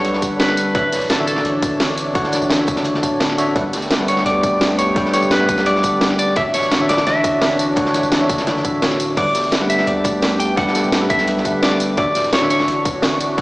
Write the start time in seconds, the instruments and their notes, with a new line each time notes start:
Already playing: 808-style bass B1, tine electric piano G3 D4 A4 B4 F#5, analog synth pad G3 A4 B4, clean electric guitar C#5
0.05 closed hi-hat
0.14 snare
0.21 808-style bass G1, tine electric piano G3 D4 A4 B4 F#5, kick, closed hi-hat, tambourine
0.40 clean electric guitar B4, snare, closed hi-hat
0.49 snare
0.57 closed hi-hat, tambourine
0.74 808-style bass D1, tine electric piano D3 D4 F#4 C#5 E5, analog synth pad E3 D4 C#5, clean electric guitar B4, kick, closed hi-hat
0.92 snare, closed hi-hat, open hi-hat, tambourine
1.01 tambourine
1.10 clean electric guitar A4, snare, closed hi-hat
1.18 tine electric piano D3 D4 F#4 C#5 E5, snare
1.27 clean electric guitar A4, closed hi-hat, tambourine
1.36 snare
1.45 808-style bass A1, closed hi-hat
1.62 kick, closed hi-hat, tambourine
1.80 snare, closed hi-hat
1.98 closed hi-hat, tambourine
2.14 tine electric piano D3 D4 F#4 C#5 F#5, kick, closed hi-hat
2.23 snare
2.32 snare, closed hi-hat, tambourine
2.42 808-style bass A1, tambourine
2.50 snare, closed hi-hat
2.58 tine electric piano D3 D4 F#4 C#5 E5, snare
2.67 808-style bass F#1, kick, closed hi-hat, tambourine
2.76 snare, tambourine
2.84 closed hi-hat
2.94 snare
3.03 808-style bass D1, tine electric piano D3 D4 F#4 C#5 A5, kick, closed hi-hat, tambourine
3.20 snare, closed hi-hat
3.30 snare
3.38 tine electric piano D3 D4 F#4 C#5 E5, closed hi-hat, tambourine
3.55 808-style bass G1, tine electric piano G3 D4 A4 B4 F#5, analog synth pad A3 B3 G4, kick, closed hi-hat
3.73 snare, closed hi-hat, open hi-hat, tambourine
3.82 tambourine
3.91 snare, closed hi-hat
3.99 tine electric piano G3 D4 A4 B4 F#5, snare
4.08 clean electric guitar C#5, closed hi-hat, tambourine
4.17 snare
4.26 808-style bass D2, clean electric guitar D5, closed hi-hat
4.43 kick, closed hi-hat, tambourine
4.61 snare, closed hi-hat
4.78 clean electric guitar C#5, closed hi-hat, tambourine
4.95 tine electric piano G3 D4 A4 B4 G5, kick, closed hi-hat
5.05 snare
5.13 clean electric guitar C#5, snare, closed hi-hat, tambourine
5.22 808-style bass D1, tambourine
5.31 clean electric guitar B4, snare, closed hi-hat
5.39 tine electric piano G3 D4 A4 B4 F#5, snare
5.49 808-style bass B1, kick, closed hi-hat, tambourine
5.58 snare, tambourine
5.66 clean electric guitar D5, closed hi-hat
5.75 snare
5.83 808-style bass G1, tine electric piano G3 D4 A4 B4 F#5, kick, closed hi-hat, tambourine
6.01 snare, closed hi-hat
6.10 snare
6.19 clean electric guitar D5, closed hi-hat, tambourine
6.36 808-style bass D1, tine electric piano D3 D4 F#4 C#5 E5, analog synth pad E3 D4 F#4 C#5, clean electric guitar E5, kick, closed hi-hat
6.54 clean electric guitar C#5, snare, closed hi-hat, open hi-hat, tambourine
6.63 tambourine
6.71 snare, closed hi-hat
6.79 tine electric piano D3 D4 F#4 C#5 E5, snare
6.89 clean electric guitar D5, snare, closed hi-hat, tambourine
6.97 snare, closed hi-hat
7.07 808-style bass A1, clean electric guitar E5, snare, closed hi-hat
7.24 kick, closed hi-hat, tambourine
7.42 snare, closed hi-hat
7.59 closed hi-hat, tambourine
7.76 tine electric piano D3 D4 F#4 C#5 F#5, kick, closed hi-hat
7.85 snare
7.94 snare, closed hi-hat, tambourine
8.03 808-style bass A1, tambourine
8.12 snare, closed hi-hat
8.20 tine electric piano D3 D4 F#4 C#5 E5, snare
8.29 808-style bass F#1, kick, closed hi-hat, tambourine
8.38 snare, tambourine
8.47 snare, closed hi-hat
8.57 snare
8.63 808-style bass D1, tine electric piano D3 D4 F#4 C#5 E5, kick, closed hi-hat, tambourine
8.82 snare, closed hi-hat
8.91 snare
9.00 closed hi-hat, tambourine
9.17 808-style bass G1, tine electric piano G3 D4 A4 B4 F#5, analog synth pad A3 B3 G4, clean electric guitar D5, kick, closed hi-hat, crash
9.35 snare, closed hi-hat, open hi-hat, tambourine
9.44 tambourine
9.52 snare, closed hi-hat
9.60 tine electric piano G3 D4 A4 B4 F#5, snare
9.70 clean electric guitar E5, closed hi-hat, tambourine
9.79 snare
9.87 808-style bass D2, clean electric guitar D5, closed hi-hat
10.04 kick, closed hi-hat, tambourine
10.22 snare, closed hi-hat
10.40 clean electric guitar G5, closed hi-hat, tambourine
10.56 tine electric piano G3 D4 G4 A4 B4, clean electric guitar F#5, kick, closed hi-hat
10.67 snare
10.75 snare, closed hi-hat, tambourine
10.84 808-style bass D1, tambourine
10.92 snare, closed hi-hat
11.00 tine electric piano G3 D4 A4 B4 F#5, snare
11.10 808-style bass B1, clean electric guitar E5, kick, closed hi-hat, tambourine
11.19 snare, tambourine
11.28 closed hi-hat
11.37 snare
11.44 808-style bass G1, tine electric piano G3 D4 A4 B4 F#5, kick, closed hi-hat, tambourine
11.63 clean electric guitar D5, snare, closed hi-hat
11.71 snare
11.80 closed hi-hat, tambourine
11.97 808-style bass D1, tine electric piano D3 D4 F#4 C#5 E5, analog synth pad E3 D4 F#4 C#6, clean electric guitar D5, kick, closed hi-hat
12.15 snare, closed hi-hat, open hi-hat, tambourine
12.24 tambourine
12.33 clean electric guitar C#5, snare, closed hi-hat
12.40 tine electric piano D3 D4 F#4 C#5 E5, snare
12.50 clean electric guitar C#5, closed hi-hat, tambourine
12.59 snare
12.68 808-style bass A1, closed hi-hat
12.85 kick, closed hi-hat, tambourine
13.02 snare, closed hi-hat
13.21 closed hi-hat, tambourine
13.37 tine electric piano D3 D4 F#4, kick, closed hi-hat